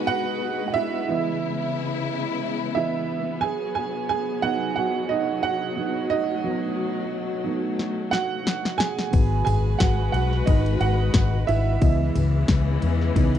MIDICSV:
0, 0, Header, 1, 5, 480
1, 0, Start_track
1, 0, Key_signature, 4, "minor"
1, 0, Tempo, 670766
1, 778, Time_signature, 4, 2, 24, 8
1, 9579, End_track
2, 0, Start_track
2, 0, Title_t, "Upright piano"
2, 0, Program_c, 0, 0
2, 0, Control_c, 0, 64, 127
2, 0, Note_on_c, 0, 54, 66
2, 0, Note_on_c, 0, 59, 59
2, 0, Note_on_c, 0, 63, 74
2, 0, Note_on_c, 0, 66, 79
2, 0, Note_on_c, 0, 68, 87
2, 0, Note_on_c, 0, 75, 101
2, 0, Note_on_c, 0, 78, 96
2, 0, Note_on_c, 0, 80, 111
2, 51, Note_off_c, 0, 78, 0
2, 51, Note_on_c, 0, 78, 120
2, 65, Note_off_c, 0, 66, 0
2, 65, Note_on_c, 0, 66, 80
2, 469, Note_off_c, 0, 66, 0
2, 475, Note_off_c, 0, 78, 0
2, 485, Note_on_c, 0, 78, 74
2, 527, Note_on_c, 0, 76, 120
2, 533, Note_off_c, 0, 78, 0
2, 542, Note_on_c, 0, 64, 85
2, 777, Note_on_c, 0, 52, 57
2, 781, Note_off_c, 0, 59, 0
2, 781, Note_on_c, 0, 59, 52
2, 785, Note_off_c, 0, 75, 0
2, 785, Note_on_c, 0, 75, 66
2, 786, Control_c, 0, 64, 0
2, 787, Note_off_c, 0, 80, 0
2, 788, Note_off_c, 0, 54, 0
2, 788, Note_off_c, 0, 63, 0
2, 791, Note_off_c, 0, 68, 0
2, 929, Control_c, 0, 64, 127
2, 1468, Note_off_c, 0, 52, 0
2, 1471, Note_off_c, 0, 59, 0
2, 1472, Note_off_c, 0, 75, 0
2, 1943, Note_off_c, 0, 76, 0
2, 1951, Note_off_c, 0, 64, 0
2, 1966, Note_on_c, 0, 76, 100
2, 1974, Note_on_c, 0, 52, 50
2, 1975, Note_on_c, 0, 59, 47
2, 1980, Note_on_c, 0, 75, 58
2, 1983, Note_on_c, 0, 64, 75
2, 2191, Note_off_c, 0, 52, 0
2, 2192, Note_off_c, 0, 59, 0
2, 2195, Note_off_c, 0, 75, 0
2, 2431, Note_off_c, 0, 64, 0
2, 2439, Note_on_c, 0, 80, 108
2, 2457, Note_on_c, 0, 68, 83
2, 2465, Control_c, 0, 64, 0
2, 2466, Note_off_c, 0, 76, 0
2, 2578, Control_c, 0, 64, 127
2, 2673, Note_off_c, 0, 80, 0
2, 2680, Note_off_c, 0, 68, 0
2, 2684, Note_on_c, 0, 80, 105
2, 2701, Note_on_c, 0, 68, 77
2, 2918, Note_off_c, 0, 80, 0
2, 2922, Note_off_c, 0, 68, 0
2, 2929, Note_on_c, 0, 80, 108
2, 2941, Note_on_c, 0, 68, 87
2, 3162, Note_off_c, 0, 68, 0
2, 3166, Note_on_c, 0, 78, 114
2, 3171, Note_on_c, 0, 54, 61
2, 3177, Note_on_c, 0, 59, 57
2, 3179, Note_on_c, 0, 63, 72
2, 3180, Note_off_c, 0, 80, 0
2, 3181, Note_on_c, 0, 66, 85
2, 3393, Note_off_c, 0, 78, 0
2, 3402, Note_off_c, 0, 66, 0
2, 3404, Note_on_c, 0, 78, 99
2, 3420, Note_on_c, 0, 66, 77
2, 3641, Note_off_c, 0, 66, 0
2, 3643, Note_on_c, 0, 75, 99
2, 3648, Note_off_c, 0, 63, 0
2, 3658, Note_off_c, 0, 78, 0
2, 3659, Note_on_c, 0, 63, 79
2, 3865, Note_off_c, 0, 54, 0
2, 3868, Note_off_c, 0, 59, 0
2, 3881, Note_off_c, 0, 63, 0
2, 3884, Note_on_c, 0, 78, 107
2, 3896, Note_on_c, 0, 66, 77
2, 3897, Note_off_c, 0, 75, 0
2, 4127, Note_on_c, 0, 54, 54
2, 4129, Note_on_c, 0, 59, 49
2, 4134, Note_on_c, 0, 63, 58
2, 4342, Note_off_c, 0, 78, 0
2, 4347, Note_off_c, 0, 54, 0
2, 4348, Note_off_c, 0, 59, 0
2, 4348, Note_off_c, 0, 66, 0
2, 4351, Note_off_c, 0, 63, 0
2, 4365, Note_on_c, 0, 75, 106
2, 4377, Note_on_c, 0, 63, 82
2, 4606, Note_off_c, 0, 63, 0
2, 4608, Note_on_c, 0, 54, 58
2, 4614, Note_on_c, 0, 59, 54
2, 4617, Note_on_c, 0, 63, 64
2, 5304, Note_off_c, 0, 54, 0
2, 5306, Note_off_c, 0, 59, 0
2, 5308, Note_off_c, 0, 63, 0
2, 5326, Note_on_c, 0, 54, 50
2, 5329, Note_on_c, 0, 59, 44
2, 5335, Note_on_c, 0, 63, 56
2, 5547, Note_off_c, 0, 54, 0
2, 5548, Note_off_c, 0, 59, 0
2, 5551, Note_off_c, 0, 63, 0
2, 5805, Note_on_c, 0, 78, 109
2, 5819, Note_on_c, 0, 66, 78
2, 5854, Note_off_c, 0, 75, 0
2, 6269, Note_off_c, 0, 66, 0
2, 6282, Note_on_c, 0, 80, 120
2, 6297, Note_on_c, 0, 68, 83
2, 6305, Note_off_c, 0, 78, 0
2, 6520, Note_on_c, 0, 54, 54
2, 6527, Note_on_c, 0, 59, 51
2, 6546, Control_c, 0, 64, 0
2, 6665, Control_c, 0, 64, 127
2, 6740, Note_off_c, 0, 80, 0
2, 6748, Note_off_c, 0, 68, 0
2, 6761, Note_on_c, 0, 80, 105
2, 6772, Note_on_c, 0, 68, 84
2, 6997, Note_off_c, 0, 68, 0
2, 7003, Note_on_c, 0, 78, 98
2, 7015, Note_on_c, 0, 66, 78
2, 7016, Note_off_c, 0, 80, 0
2, 7234, Note_off_c, 0, 78, 0
2, 7239, Note_off_c, 0, 66, 0
2, 7244, Note_on_c, 0, 78, 94
2, 7258, Note_on_c, 0, 66, 72
2, 7473, Note_off_c, 0, 78, 0
2, 7480, Note_off_c, 0, 66, 0
2, 7484, Note_on_c, 0, 75, 93
2, 7498, Note_on_c, 0, 63, 77
2, 7720, Note_off_c, 0, 63, 0
2, 7733, Note_on_c, 0, 78, 96
2, 7738, Note_off_c, 0, 75, 0
2, 7741, Note_on_c, 0, 66, 79
2, 8190, Note_off_c, 0, 66, 0
2, 8209, Note_on_c, 0, 76, 100
2, 8220, Note_on_c, 0, 64, 80
2, 8229, Note_off_c, 0, 78, 0
2, 8420, Note_off_c, 0, 54, 0
2, 8423, Note_off_c, 0, 59, 0
2, 8452, Note_on_c, 0, 52, 61
2, 8457, Note_on_c, 0, 59, 54
2, 8461, Note_on_c, 0, 75, 65
2, 8466, Control_c, 0, 64, 0
2, 8591, Control_c, 0, 64, 127
2, 8784, Note_off_c, 0, 52, 0
2, 8787, Note_off_c, 0, 59, 0
2, 8789, Note_off_c, 0, 75, 0
2, 9412, Note_on_c, 0, 52, 52
2, 9416, Note_on_c, 0, 59, 50
2, 9417, Note_on_c, 0, 63, 60
2, 9579, Note_off_c, 0, 52, 0
2, 9579, Note_off_c, 0, 59, 0
2, 9579, Note_off_c, 0, 63, 0
2, 9579, Note_off_c, 0, 64, 0
2, 9579, Note_off_c, 0, 76, 0
2, 9579, End_track
3, 0, Start_track
3, 0, Title_t, "String section"
3, 0, Program_c, 1, 48
3, 0, Note_on_c, 1, 56, 77
3, 0, Note_on_c, 1, 59, 74
3, 0, Note_on_c, 1, 66, 76
3, 0, Note_on_c, 1, 71, 85
3, 752, Note_off_c, 1, 71, 0
3, 753, Note_off_c, 1, 59, 0
3, 753, Note_off_c, 1, 66, 0
3, 771, Note_on_c, 1, 64, 93
3, 776, Note_on_c, 1, 49, 85
3, 780, Note_on_c, 1, 59, 79
3, 2422, Note_off_c, 1, 56, 0
3, 2437, Note_off_c, 1, 64, 0
3, 2440, Note_off_c, 1, 49, 0
3, 2452, Note_on_c, 1, 54, 88
3, 4349, Note_off_c, 1, 59, 0
3, 4382, Note_on_c, 1, 57, 77
3, 6505, Note_off_c, 1, 54, 0
3, 6517, Note_off_c, 1, 57, 0
3, 6532, Note_on_c, 1, 71, 89
3, 6536, Note_on_c, 1, 56, 81
3, 6538, Note_on_c, 1, 66, 74
3, 8435, Note_off_c, 1, 71, 0
3, 8437, Note_off_c, 1, 56, 0
3, 8438, Note_off_c, 1, 66, 0
3, 8447, Note_on_c, 1, 52, 90
3, 8448, Note_on_c, 1, 59, 78
3, 8450, Note_on_c, 1, 49, 88
3, 8452, Note_on_c, 1, 56, 78
3, 9579, Note_off_c, 1, 49, 0
3, 9579, Note_off_c, 1, 52, 0
3, 9579, Note_off_c, 1, 56, 0
3, 9579, Note_off_c, 1, 59, 0
3, 9579, End_track
4, 0, Start_track
4, 0, Title_t, "Fingered electric bass"
4, 0, Program_c, 2, 33
4, 6537, Note_on_c, 2, 32, 96
4, 6734, Note_off_c, 2, 32, 0
4, 6776, Note_on_c, 2, 32, 107
4, 6973, Note_off_c, 2, 32, 0
4, 7014, Note_on_c, 2, 32, 93
4, 7212, Note_off_c, 2, 32, 0
4, 7251, Note_on_c, 2, 35, 90
4, 7450, Note_off_c, 2, 35, 0
4, 7495, Note_on_c, 2, 32, 100
4, 7692, Note_off_c, 2, 32, 0
4, 7733, Note_on_c, 2, 32, 96
4, 7931, Note_off_c, 2, 32, 0
4, 7974, Note_on_c, 2, 32, 105
4, 8172, Note_off_c, 2, 32, 0
4, 8219, Note_on_c, 2, 32, 101
4, 8415, Note_off_c, 2, 32, 0
4, 8457, Note_on_c, 2, 37, 101
4, 8653, Note_off_c, 2, 37, 0
4, 8698, Note_on_c, 2, 37, 106
4, 8894, Note_off_c, 2, 37, 0
4, 8935, Note_on_c, 2, 37, 107
4, 9132, Note_off_c, 2, 37, 0
4, 9179, Note_on_c, 2, 40, 94
4, 9375, Note_off_c, 2, 40, 0
4, 9415, Note_on_c, 2, 37, 108
4, 9579, Note_off_c, 2, 37, 0
4, 9579, End_track
5, 0, Start_track
5, 0, Title_t, "Drums"
5, 5577, Note_on_c, 9, 38, 61
5, 5649, Note_off_c, 9, 38, 0
5, 5817, Note_on_c, 9, 38, 73
5, 5889, Note_off_c, 9, 38, 0
5, 6060, Note_on_c, 9, 38, 97
5, 6131, Note_off_c, 9, 38, 0
5, 6192, Note_on_c, 9, 38, 80
5, 6264, Note_off_c, 9, 38, 0
5, 6298, Note_on_c, 9, 38, 107
5, 6369, Note_off_c, 9, 38, 0
5, 6430, Note_on_c, 9, 38, 99
5, 6502, Note_off_c, 9, 38, 0
5, 6534, Note_on_c, 9, 51, 87
5, 6537, Note_on_c, 9, 36, 114
5, 6606, Note_off_c, 9, 51, 0
5, 6608, Note_off_c, 9, 36, 0
5, 6773, Note_on_c, 9, 43, 75
5, 6775, Note_on_c, 9, 51, 60
5, 6844, Note_off_c, 9, 43, 0
5, 6847, Note_off_c, 9, 51, 0
5, 7014, Note_on_c, 9, 38, 105
5, 7015, Note_on_c, 9, 51, 79
5, 7018, Note_on_c, 9, 36, 119
5, 7086, Note_off_c, 9, 38, 0
5, 7087, Note_off_c, 9, 51, 0
5, 7089, Note_off_c, 9, 36, 0
5, 7257, Note_on_c, 9, 51, 62
5, 7328, Note_off_c, 9, 51, 0
5, 7391, Note_on_c, 9, 38, 35
5, 7462, Note_off_c, 9, 38, 0
5, 7493, Note_on_c, 9, 51, 74
5, 7495, Note_on_c, 9, 36, 112
5, 7565, Note_off_c, 9, 51, 0
5, 7566, Note_off_c, 9, 36, 0
5, 7629, Note_on_c, 9, 51, 48
5, 7701, Note_off_c, 9, 51, 0
5, 7733, Note_on_c, 9, 51, 64
5, 7804, Note_off_c, 9, 51, 0
5, 7970, Note_on_c, 9, 38, 126
5, 7972, Note_on_c, 9, 51, 71
5, 7976, Note_on_c, 9, 36, 126
5, 8042, Note_off_c, 9, 38, 0
5, 8043, Note_off_c, 9, 51, 0
5, 8047, Note_off_c, 9, 36, 0
5, 8111, Note_on_c, 9, 43, 69
5, 8183, Note_off_c, 9, 43, 0
5, 8219, Note_on_c, 9, 51, 61
5, 8290, Note_off_c, 9, 51, 0
5, 8455, Note_on_c, 9, 51, 83
5, 8457, Note_on_c, 9, 36, 116
5, 8527, Note_off_c, 9, 51, 0
5, 8528, Note_off_c, 9, 36, 0
5, 8696, Note_on_c, 9, 43, 73
5, 8698, Note_on_c, 9, 51, 60
5, 8768, Note_off_c, 9, 43, 0
5, 8770, Note_off_c, 9, 51, 0
5, 8932, Note_on_c, 9, 38, 114
5, 8934, Note_on_c, 9, 51, 76
5, 8937, Note_on_c, 9, 36, 117
5, 9004, Note_off_c, 9, 38, 0
5, 9005, Note_off_c, 9, 51, 0
5, 9009, Note_off_c, 9, 36, 0
5, 9175, Note_on_c, 9, 51, 67
5, 9246, Note_off_c, 9, 51, 0
5, 9313, Note_on_c, 9, 38, 33
5, 9384, Note_off_c, 9, 38, 0
5, 9417, Note_on_c, 9, 36, 104
5, 9419, Note_on_c, 9, 51, 73
5, 9489, Note_off_c, 9, 36, 0
5, 9491, Note_off_c, 9, 51, 0
5, 9553, Note_on_c, 9, 51, 49
5, 9579, Note_off_c, 9, 51, 0
5, 9579, End_track
0, 0, End_of_file